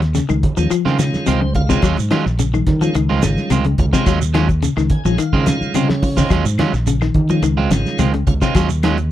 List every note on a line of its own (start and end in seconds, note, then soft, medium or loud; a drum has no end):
0.00 0.19 D#2 medium
0.00 muted clean electric guitar stroke soft
0.00 snare soft
0.00 closed hi-hat soft
0.00 shekere soft
0.15 0.25 C#3 medium
0.15 snare soft
0.15 closed hi-hat medium
0.15 shekere medium
0.29 0.41 C#2 medium
0.29 0.48 D#3 medium
0.29 muted clean electric guitar stroke soft
0.29 high conga medium
0.29 claves medium
0.29 shekere soft
0.43 kick medium
0.43 closed hi-hat soft
0.43 low conga medium
0.57 0.69 D#2 medium
0.57 0.71 D#3 medium
0.57 0.66 F3 medium
0.57 0.72 G#3 medium
0.57 0.72 C#4 medium
0.57 0.72 F4 medium
0.57 muted clean electric guitar stroke soft
0.57 high conga medium
0.57 shekere medium
0.71 0.89 F3 medium
0.71 muted clean electric guitar stroke soft
0.71 muted fingered electric bass stroke soft
0.71 closed hi-hat medium
0.71 claves medium
0.71 shekere medium
0.85 1.10 C#3 medium
0.85 0.97 D#3 medium
0.85 0.97 G#3 medium
0.85 0.98 C4 medium
0.85 0.98 F4 medium
0.85 snare soft
0.85 high conga medium
0.99 1.18 C#3 medium
0.99 1.26 D#3 medium
0.99 1.26 G#3 medium
0.99 1.26 C#4 medium
0.99 1.27 F4 loud
0.99 muted clean electric guitar stroke soft
0.99 snare medium
0.99 closed hi-hat soft
0.99 high conga medium
0.99 shekere medium
1.14 muted fingered electric bass stroke soft
1.14 snare soft
1.14 high conga medium
1.14 shekere soft
1.26 1.75 C#2 medium
1.26 1.36 C3 medium
1.26 1.41 D#3 medium
1.26 1.41 G#3 medium
1.26 1.41 C4 medium
1.26 1.40 F4 medium
1.26 1.53 C5 medium
1.26 closed hi-hat medium
1.26 high conga medium
1.26 claves medium
1.26 shekere medium
1.41 1.60 C#3 medium
1.41 muted clean electric guitar stroke soft
1.41 high conga medium
1.55 1.62 C#4 medium
1.55 1.62 F4 loud
1.55 1.81 F5 medium
1.55 muted clean electric guitar stroke soft
1.55 kick medium
1.55 closed hi-hat soft
1.55 low conga medium
1.55 shekere soft
1.69 1.78 C3 medium
1.69 1.83 D#3 medium
1.69 1.83 G#3 medium
1.69 1.82 G#3 soft
1.69 1.83 C4 medium
1.69 1.83 C#4 medium
1.69 1.83 F4 medium
1.69 kick medium
1.69 snare medium
1.69 shekere medium
1.82 1.95 D#2 medium
1.82 2.01 F#3 medium
1.82 1.98 F#3 medium
1.82 1.97 G#3 medium
1.82 1.97 C#4 medium
1.82 1.97 F4 medium
1.82 kick medium
1.82 closed hi-hat medium
1.82 claves medium
1.82 shekere medium
1.97 2.10 G#2 medium
1.97 muted clean electric guitar stroke soft
1.97 closed hi-hat soft
1.97 shekere medium
2.11 2.29 D#3 medium
2.11 2.26 F#3 medium
2.11 2.25 G#3 medium
2.11 2.25 C#4 medium
2.11 2.25 F4 medium
2.11 muted fingered electric bass stroke soft
2.11 snare medium
2.11 closed hi-hat soft
2.11 high conga medium
2.11 claves medium
2.26 2.61 A#1 medium
2.26 muted clean electric guitar stroke soft
2.26 snare soft
2.26 shekere soft
2.39 2.49 C#3 medium
2.39 closed hi-hat medium
2.39 shekere medium
2.54 2.72 D#3 medium
2.54 muted clean electric guitar stroke soft
2.54 high conga medium
2.54 claves medium
2.54 shekere soft
2.67 2.91 D#3 medium
2.67 kick medium
2.67 snare soft
2.67 closed hi-hat soft
2.67 low conga medium
2.81 2.95 D#3 medium
2.81 2.90 F3 medium
2.81 2.95 G#3 medium
2.81 2.95 C#4 medium
2.81 2.95 F4 medium
2.81 muted clean electric guitar stroke soft
2.81 closed hi-hat soft
2.81 high conga medium
2.81 shekere medium
2.95 3.19 C#2 medium
2.95 3.14 D#3 medium
2.95 muted clean electric guitar stroke soft
2.95 closed hi-hat medium
2.95 claves medium
2.95 shekere medium
3.09 3.22 D#3 medium
3.09 3.22 G#3 medium
3.09 3.23 C4 medium
3.09 3.23 F4 medium
3.09 high conga medium
3.22 3.35 G#1 medium
3.22 3.41 C#3 medium
3.22 3.50 D#3 medium
3.22 3.50 G#3 medium
3.22 3.50 C#4 medium
3.22 3.50 F4 medium
3.22 snare medium
3.22 closed hi-hat medium
3.22 high conga medium
3.22 low conga medium
3.22 shekere medium
3.37 snare soft
3.37 high conga medium
3.37 shekere soft
3.50 3.75 C#2 medium
3.50 3.60 C3 medium
3.50 3.65 D#3 medium
3.50 3.66 G#3 medium
3.50 3.65 C4 medium
3.50 3.65 F4 medium
3.50 closed hi-hat medium
3.50 high conga medium
3.50 claves medium
3.50 shekere medium
3.65 3.84 C#3 medium
3.65 muted clean electric guitar stroke soft
3.65 closed hi-hat soft
3.65 high conga medium
3.78 3.91 C#2 medium
3.78 3.86 C#4 medium
3.78 3.86 F4 loud
3.78 muted clean electric guitar stroke soft
3.78 kick medium
3.78 closed hi-hat medium
3.78 low conga medium
3.78 shekere soft
3.93 4.02 C3 medium
3.93 4.07 D#3 medium
3.93 4.06 G#3 soft
3.93 4.07 G#3 medium
3.93 4.07 C4 soft
3.93 4.07 C#4 medium
3.93 4.06 F4 medium
3.93 4.07 F4 medium
3.93 kick medium
3.93 snare medium
3.93 closed hi-hat soft
3.93 shekere medium
4.06 4.67 D#2 medium
4.06 4.21 F#3 medium
4.06 4.25 F#3 medium
4.06 4.20 G#3 medium
4.06 4.20 C#4 medium
4.06 4.19 F4 medium
4.06 kick medium
4.06 closed hi-hat medium
4.06 claves medium
4.06 shekere medium
4.20 muted clean electric guitar stroke soft
4.20 shekere medium
4.34 4.53 D#3 medium
4.34 4.49 F#3 medium
4.34 4.48 G#3 medium
4.34 4.48 C#4 medium
4.34 4.47 F4 medium
4.34 snare medium
4.34 closed hi-hat soft
4.34 high conga medium
4.34 claves medium
4.49 muted clean electric guitar stroke soft
4.49 kick medium
4.49 closed hi-hat soft
4.49 shekere soft
4.62 4.72 C#3 medium
4.62 closed hi-hat medium
4.62 shekere medium
4.77 4.89 C#2 medium
4.77 4.96 D#3 medium
4.77 muted clean electric guitar stroke soft
4.77 snare soft
4.77 claves medium
4.77 shekere soft
4.90 5.17 G#5 medium
4.90 kick medium
4.90 closed hi-hat medium
4.90 low conga medium
5.05 5.17 A#1 medium
5.05 5.19 D#3 medium
5.05 5.14 F3 medium
5.05 5.19 G#3 medium
5.05 5.19 C#4 medium
5.05 5.20 F4 medium
5.05 muted clean electric guitar stroke soft
5.05 high conga medium
5.05 shekere medium
5.18 5.37 D#3 medium
5.18 5.45 F5 medium
5.18 muted clean electric guitar stroke soft
5.18 closed hi-hat medium
5.18 claves medium
5.18 shekere medium
5.33 5.57 C#3 medium
5.33 5.46 D#3 medium
5.33 5.46 G#3 medium
5.33 5.46 C4 medium
5.33 5.47 F4 medium
5.33 kick medium
5.33 high conga medium
5.46 5.65 C#3 medium
5.46 5.74 D#3 medium
5.46 5.74 G#3 medium
5.46 5.74 C#4 medium
5.46 5.74 F4 loud
5.46 5.73 F5 medium
5.46 muted clean electric guitar stroke soft
5.46 snare medium
5.46 closed hi-hat medium
5.46 high conga medium
5.46 low conga medium
5.46 shekere medium
5.61 muted fingered electric bass stroke soft
5.61 high conga medium
5.61 shekere soft
5.74 5.85 C3 medium
5.74 6.23 C#3 medium
5.74 5.88 G#3 medium
5.74 5.89 C4 medium
5.74 5.88 F4 medium
5.74 6.27 C#5 medium
5.74 muted clean electric guitar stroke medium
5.74 closed hi-hat medium
5.74 high conga medium
5.74 claves medium
5.74 shekere medium
5.89 6.08 C#3 medium
5.89 muted clean electric guitar stroke soft
5.89 snare medium
5.89 high conga medium
6.02 6.10 C#4 medium
6.02 6.10 F4 loud
6.02 muted clean electric guitar stroke soft
6.02 kick medium
6.02 open hi-hat medium
6.02 high conga medium
6.02 shekere soft
6.17 6.26 C3 medium
6.17 6.31 D#3 medium
6.17 6.31 G#3 medium
6.17 6.30 G#3 soft
6.17 6.31 C4 medium
6.17 6.32 C#4 medium
6.17 6.31 F4 medium
6.17 kick medium
6.17 snare medium
6.17 low conga medium
6.17 shekere medium
6.30 6.43 D#2 medium
6.30 6.49 F#3 medium
6.30 6.46 F#3 medium
6.30 6.46 G#3 medium
6.30 6.45 C#4 medium
6.30 6.45 F4 medium
6.30 kick medium
6.30 closed hi-hat medium
6.30 claves medium
6.30 shekere medium
6.45 6.57 G#2 medium
6.45 muted clean electric guitar stroke soft
6.45 closed hi-hat soft
6.45 shekere medium
6.58 6.78 D#3 medium
6.58 6.74 F#3 medium
6.58 6.73 G#3 medium
6.58 6.73 C#4 medium
6.58 6.72 F4 medium
6.58 muted fingered electric bass stroke soft
6.58 snare medium
6.58 closed hi-hat soft
6.58 high conga medium
6.58 low conga medium
6.58 claves medium
6.73 7.09 A#1 medium
6.73 muted clean electric guitar stroke soft
6.73 snare soft
6.73 shekere soft
6.87 6.97 C#3 medium
6.87 closed hi-hat medium
6.87 shekere medium
7.01 7.20 D#3 medium
7.01 muted clean electric guitar stroke soft
7.01 snare soft
7.01 claves medium
7.01 shekere soft
7.14 7.39 D#3 medium
7.14 kick medium
7.14 closed hi-hat soft
7.14 low conga medium
7.29 7.43 D#3 medium
7.29 7.39 F3 medium
7.29 7.44 G#3 medium
7.29 7.44 C#4 medium
7.29 7.44 F4 medium
7.29 muted clean electric guitar stroke soft
7.29 closed hi-hat soft
7.29 high conga medium
7.29 shekere medium
7.42 7.67 C#2 loud
7.42 7.62 D#3 medium
7.42 muted clean electric guitar stroke soft
7.42 closed hi-hat medium
7.42 claves medium
7.42 shekere medium
7.57 7.70 G#3 medium
7.57 7.71 C4 medium
7.57 7.71 F4 medium
7.57 high conga medium
7.70 7.83 G#1 medium
7.70 7.90 C#3 medium
7.70 7.98 D#3 medium
7.70 7.99 G#3 medium
7.70 7.99 C#4 medium
7.70 7.99 F4 medium
7.70 snare medium
7.70 closed hi-hat soft
7.70 high conga medium
7.70 shekere medium
7.85 muted fingered electric bass stroke soft
7.85 snare soft
7.85 high conga medium
7.85 shekere soft
7.99 8.23 C#2 medium
7.99 8.09 C3 medium
7.99 8.14 D#3 medium
7.99 8.13 G#3 medium
7.99 8.13 C4 medium
7.99 8.13 F4 medium
7.99 closed hi-hat medium
7.99 high conga medium
7.99 claves medium
7.99 shekere medium
8.14 8.33 C#3 medium
8.14 muted clean electric guitar stroke soft
8.14 closed hi-hat soft
8.27 8.40 C#2 medium
8.27 8.34 C#4 medium
8.27 8.34 F4 loud
8.27 muted clean electric guitar stroke soft
8.27 kick medium
8.27 closed hi-hat medium
8.27 low conga medium
8.27 shekere soft
8.41 8.51 C3 medium
8.41 8.56 D#3 medium
8.41 8.56 G#3 medium
8.41 8.54 G#3 soft
8.41 8.55 C4 medium
8.41 8.56 C#4 medium
8.41 8.55 F4 medium
8.41 8.56 F4 medium
8.41 kick medium
8.41 snare medium
8.41 closed hi-hat soft
8.41 shekere medium
8.55 9.12 D#2 medium
8.55 8.70 F#3 medium
8.55 8.74 F#3 medium
8.55 8.70 G#3 medium
8.55 8.70 C#4 medium
8.55 8.69 F4 medium
8.55 kick medium
8.55 snare soft
8.55 closed hi-hat medium
8.55 claves medium
8.55 shekere medium
8.69 muted clean electric guitar stroke soft
8.69 shekere medium
8.83 9.03 D#3 medium
8.83 8.98 F#3 medium
8.83 8.98 G#3 medium
8.83 8.97 C#4 medium
8.83 8.97 F4 medium
8.83 snare medium
8.83 closed hi-hat medium
8.83 high conga medium
8.83 claves medium
8.98 muted clean electric guitar stroke soft
8.98 closed hi-hat soft
8.98 shekere soft